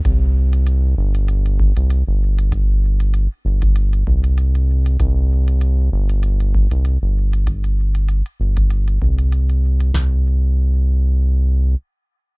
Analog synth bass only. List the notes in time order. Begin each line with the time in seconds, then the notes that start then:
0.05 C2
0.97 G1
1.77 C2
2.07 G1
3.45 G1
4.07 C2
5.00 C2
5.92 G1
6.71 C2
7.02 G1
8.40 G1
9.02 C2
9.93 C2